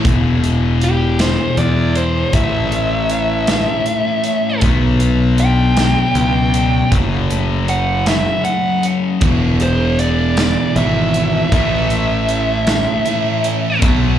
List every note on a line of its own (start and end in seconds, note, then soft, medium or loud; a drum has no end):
0.02 1.36 E1 loud
0.02 2.30 E2 medium
0.02 1.96 E2 medium
0.02 2.31 B2 medium
0.02 2.32 E3 medium
0.02 kick loud
0.02 closed hi-hat loud
0.43 1.56 G#3 medium
0.43 closed hi-hat medium
0.81 1.20 G4 medium
0.81 closed hi-hat medium
1.19 2.33 G#4 medium
1.19 1.57 C5 medium
1.19 snare loud
1.19 closed hi-hat medium
1.57 2.23 E2 medium
1.57 2.34 G#3 medium
1.57 1.95 D5 medium
1.57 closed hi-hat medium
1.96 2.33 C5 medium
1.96 closed hi-hat medium
2.32 3.66 A1 medium
2.32 4.60 A2 medium
2.32 4.25 A2 medium
2.32 4.61 E3 medium
2.32 4.62 A3 loud
2.32 4.60 E5 loud
2.32 kick loud
2.32 closed hi-hat loud
2.72 3.86 A3 medium
2.72 closed hi-hat medium
3.10 4.23 C#4 medium
3.10 closed hi-hat medium
3.47 4.63 A4 medium
3.47 snare loud
3.47 closed hi-hat medium
3.86 4.63 A3 medium
3.86 closed hi-hat medium
4.24 4.63 C#4 medium
4.24 closed hi-hat medium
4.60 5.95 B1 loud
4.60 6.89 B2 medium
4.60 6.54 B2 medium
4.60 6.93 F#3 medium
4.60 6.91 B3 loud
4.60 kick loud
4.60 closed hi-hat loud
5.00 6.15 B3 medium
5.00 closed hi-hat medium
5.38 6.54 D4 medium
5.38 6.89 G5 loud
5.38 closed hi-hat medium
5.77 snare loud
5.77 closed hi-hat medium
6.14 6.81 C#2 medium
6.14 6.93 B3 medium
6.14 closed hi-hat medium
6.54 6.93 D4 medium
6.54 closed hi-hat medium
6.90 8.24 F#1 medium
6.90 9.19 F#2 medium
6.90 9.20 C#3 medium
6.90 8.85 F#3 medium
6.90 kick loud
6.90 closed hi-hat loud
6.94 9.21 F#3 medium
7.30 8.45 A3 medium
7.30 closed hi-hat medium
7.68 8.84 C#4 medium
7.68 8.07 F#5 loud
7.68 closed hi-hat medium
8.06 9.23 G#4 medium
8.06 8.44 E5 medium
8.06 snare loud
8.06 closed hi-hat medium
8.45 9.23 A3 medium
8.45 8.83 F#5 loud
8.45 closed hi-hat medium
8.83 9.23 C#4 medium
8.83 closed hi-hat medium
9.20 10.54 E1 medium
9.20 11.49 E2 medium
9.20 11.15 E2 medium
9.20 11.50 B2 medium
9.20 11.51 E3 medium
9.20 kick loud
9.20 closed hi-hat loud
9.60 10.75 G#3 medium
9.60 9.99 C5 medium
9.60 closed hi-hat medium
9.99 11.14 B3 medium
9.99 10.74 D5 loud
9.99 closed hi-hat medium
10.37 11.53 G#4 medium
10.37 snare loud
10.37 closed hi-hat medium
10.75 11.42 G#1 medium
10.75 11.50 E2 medium
10.75 11.51 B2 medium
10.75 11.52 E3 medium
10.75 11.53 G#3 medium
10.75 11.51 E5 medium
10.75 closed hi-hat medium
11.14 11.53 B3 medium
11.14 closed hi-hat medium
11.50 12.85 A1 loud
11.50 13.79 A2 medium
11.50 13.80 E3 medium
11.50 13.81 A3 medium
11.50 kick loud
11.50 closed hi-hat loud
11.54 13.45 A2 medium
11.54 13.79 E5 loud
11.90 13.06 A3 medium
11.90 closed hi-hat medium
12.29 13.44 C#4 medium
12.29 closed hi-hat medium
12.67 13.83 A4 medium
12.67 snare loud
12.67 closed hi-hat medium
13.06 13.80 A2 medium
13.06 13.81 E3 medium
13.06 13.83 A3 medium
13.06 13.82 A3 medium
13.06 closed hi-hat medium
13.44 13.83 C#4 medium
13.44 closed hi-hat medium
13.80 14.19 B1 medium
13.80 14.19 B2 loud
13.80 14.19 F#3 loud
13.80 14.19 B3 loud
13.80 kick loud
13.80 closed hi-hat loud
13.84 14.19 B2 medium